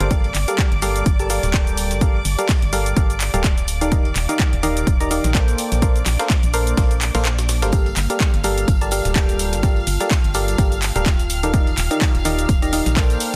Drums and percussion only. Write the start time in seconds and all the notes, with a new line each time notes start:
0.00 closed hi-hat
0.11 kick, closed hi-hat, shaker
0.24 closed hi-hat
0.35 clap, closed hi-hat, open hi-hat, shaker
0.48 closed hi-hat, shaker
0.58 kick, snare, clap, closed hi-hat, shaker
0.72 closed hi-hat
0.82 closed hi-hat, open hi-hat, shaker
0.96 closed hi-hat, shaker
1.06 kick, closed hi-hat, shaker
1.19 closed hi-hat, shaker
1.30 closed hi-hat, open hi-hat, shaker
1.43 snare, closed hi-hat, shaker
1.54 kick, snare, clap, closed hi-hat, shaker
1.67 closed hi-hat, shaker
1.77 closed hi-hat, open hi-hat, shaker
1.91 snare, closed hi-hat, shaker
2.01 kick, closed hi-hat, shaker
2.25 closed hi-hat, open hi-hat, shaker
2.39 closed hi-hat, shaker
2.49 kick, snare, clap, closed hi-hat, open hi-hat, shaker
2.62 closed hi-hat
2.73 closed hi-hat, open hi-hat, shaker
2.86 closed hi-hat, shaker
2.97 kick, closed hi-hat, shaker
3.10 closed hi-hat, shaker
3.20 clap, closed hi-hat, open hi-hat, shaker
3.34 closed hi-hat, shaker
3.44 kick, snare, clap, closed hi-hat, shaker
3.58 closed hi-hat, shaker
3.68 closed hi-hat, open hi-hat, shaker
3.81 closed hi-hat, shaker
3.92 kick, closed hi-hat, shaker
4.05 closed hi-hat
4.16 clap, closed hi-hat, open hi-hat, shaker
4.29 closed hi-hat, shaker
4.39 kick, snare, clap, closed hi-hat, shaker
4.53 closed hi-hat
4.63 closed hi-hat, open hi-hat, shaker
4.77 closed hi-hat, shaker
4.87 kick, closed hi-hat, shaker
5.00 closed hi-hat, shaker
5.11 closed hi-hat, open hi-hat, shaker
5.24 snare, closed hi-hat, shaker
5.35 kick, snare, clap, closed hi-hat, shaker
5.48 closed hi-hat, shaker
5.58 closed hi-hat, open hi-hat, shaker
5.72 snare, closed hi-hat, shaker
5.82 kick, closed hi-hat, shaker
5.96 closed hi-hat, shaker
6.06 snare, clap, closed hi-hat, open hi-hat, shaker
6.19 snare, closed hi-hat, shaker
6.30 kick, snare, clap, closed hi-hat, open hi-hat, shaker
6.43 closed hi-hat, shaker
6.54 open hi-hat, shaker
6.67 closed hi-hat, shaker
6.77 kick, snare, closed hi-hat, open hi-hat, shaker
6.91 closed hi-hat, shaker
7.01 clap, closed hi-hat, open hi-hat, shaker
7.15 snare, closed hi-hat, open hi-hat, shaker
7.25 snare, clap, closed hi-hat, shaker
7.38 snare, closed hi-hat, shaker
7.49 snare, closed hi-hat, open hi-hat, shaker
7.62 snare, closed hi-hat, shaker
7.72 kick, closed hi-hat, tambourine, shaker
7.86 closed hi-hat, tambourine
7.96 clap, closed hi-hat, open hi-hat, tambourine, shaker
8.10 closed hi-hat, tambourine, shaker
8.20 kick, snare, clap, closed hi-hat, tambourine, shaker
8.34 closed hi-hat, tambourine
8.44 closed hi-hat, open hi-hat, tambourine, shaker
8.58 closed hi-hat, tambourine, shaker
8.68 kick, closed hi-hat, tambourine, shaker
8.81 closed hi-hat, tambourine, shaker
8.91 closed hi-hat, open hi-hat, tambourine, shaker
9.05 snare, closed hi-hat, tambourine, shaker
9.16 kick, snare, clap, closed hi-hat, shaker
9.28 closed hi-hat, tambourine, shaker
9.39 closed hi-hat, open hi-hat, tambourine, shaker
9.52 snare, closed hi-hat, tambourine, shaker
9.63 kick, closed hi-hat, tambourine, shaker
9.76 tambourine
9.87 closed hi-hat, open hi-hat, tambourine, shaker
10.00 closed hi-hat, tambourine, shaker
10.11 kick, snare, clap, closed hi-hat, open hi-hat, shaker
10.24 closed hi-hat, tambourine
10.34 closed hi-hat, open hi-hat, tambourine, shaker
10.48 closed hi-hat, tambourine, shaker
10.58 kick, closed hi-hat, tambourine, shaker
10.72 closed hi-hat, tambourine, shaker
10.82 clap, closed hi-hat, open hi-hat, tambourine, shaker
10.96 closed hi-hat, tambourine, shaker
11.06 kick, snare, clap, closed hi-hat, tambourine, shaker
11.19 closed hi-hat, tambourine, shaker
11.30 closed hi-hat, open hi-hat, tambourine, shaker
11.43 closed hi-hat, tambourine, shaker
11.54 kick, closed hi-hat, tambourine, shaker
11.67 closed hi-hat, tambourine
11.77 clap, closed hi-hat, open hi-hat, tambourine, shaker
11.90 closed hi-hat, tambourine, shaker
12.01 kick, snare, clap, closed hi-hat, tambourine, shaker
12.15 closed hi-hat, tambourine
12.25 closed hi-hat, open hi-hat, tambourine, shaker
12.38 closed hi-hat, tambourine, shaker
12.49 kick, closed hi-hat, tambourine, shaker
12.62 closed hi-hat, tambourine, shaker
12.73 closed hi-hat, open hi-hat, tambourine, shaker
12.86 snare, closed hi-hat, tambourine, shaker
12.97 kick, snare, clap, closed hi-hat, tambourine, shaker
13.10 closed hi-hat, tambourine, shaker
13.20 closed hi-hat, open hi-hat, tambourine, shaker